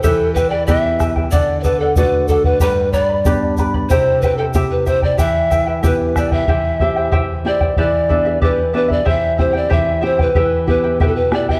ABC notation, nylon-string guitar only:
X:1
M:2/4
L:1/8
Q:1/4=93
K:Clyd
V:1 name="Nylon-string guitar"
E,2 [B,EG]2 | D,2 [A,DF]2 | G,,2 [B,DG]2 | C,2 [CEG]2 |
E,2 [B,EG]2 | E, [CEG] E, [CEG] | E, [B,DG] E, [B,DG] | E, [CEG] E, [CEG] |
E, [B,EG] B,, [B,EG] |]